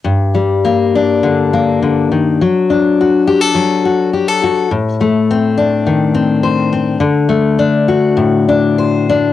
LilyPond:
\new Staff \with { instrumentName = "Steel-string acoustic guitar" } { \time 4/4 \key g \minor \tempo 4 = 103 << { r4 bes8 d'4 bes4. | r4 fis'8 g'16 a'8. fis'8 g'16 a'16 fis'8 | r4 c'8 d'4 c'8 c''8 c'8 | r4 d'8 fis'4 d'8 c''8 d'8 | } \\ { g,8 g4. d4 d8 ees8 | fis8 d'4. fis2 | a,8 a4. ees2 | d8 a4. a,2 | } >> }